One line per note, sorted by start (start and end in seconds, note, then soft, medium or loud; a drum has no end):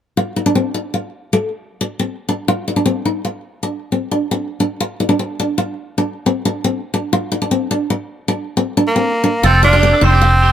0.17 0.32 F4 medium
0.36 0.44 D#4 medium
0.46 0.53 D4 medium
0.55 0.70 C4 medium
0.74 0.90 D#4 medium
0.94 1.09 F4 medium
1.33 1.48 A3 medium
1.81 muted steel-string acoustic guitar stroke medium
1.99 2.15 C4 medium
2.29 2.44 D4 medium
2.48 2.63 F4 medium
2.68 2.75 D#4 medium
2.76 2.84 D4 medium
2.86 3.01 C4 medium
3.05 3.21 D#4 medium
3.25 3.40 F4 medium
3.63 3.79 D4 medium
3.92 4.08 C4 medium
4.11 4.27 D4 medium
4.31 4.47 C4 medium
4.60 4.76 D4 medium
4.80 4.95 F4 medium
5.00 5.07 D#4 medium
5.09 5.17 D4 medium
5.19 5.34 C4 medium
5.40 5.54 D4 medium
5.58 5.73 F4 medium
5.98 6.12 D4 medium
6.26 6.41 C4 medium
6.45 6.60 D4 medium
6.64 6.79 C4 medium
6.94 7.09 D4 medium
7.13 7.28 F4 medium
7.32 7.39 D#4 medium
7.42 7.49 D4 medium
7.51 7.66 C4 medium
7.71 7.86 D4 medium
7.90 muted steel-string acoustic guitar stroke medium
8.28 8.43 D4 medium
8.57 8.72 C4 medium
8.77 8.92 D4 medium
8.88 9.41 A#3 medium
8.96 9.11 C4 medium
9.24 9.39 D4 medium
9.43 9.93 F1 medium
9.43 9.63 C4 medium
9.43 9.59 F4 medium
9.43 9.63 A4 medium
9.63 10.06 D4 loud
9.63 9.71 D#4 medium
9.63 9.73 F4 medium
9.73 9.81 D4 medium
9.73 9.92 G4 medium
9.83 9.98 C4 medium
9.93 10.02 A4 medium
10.01 10.51 F1 medium
10.01 10.52 C4 medium
10.01 10.17 D#4 medium
10.01 10.12 C5 medium
10.12 10.31 G4 medium
10.21 10.37 F4 medium
10.32 muted clean electric guitar stroke medium
10.42 10.51 G4 medium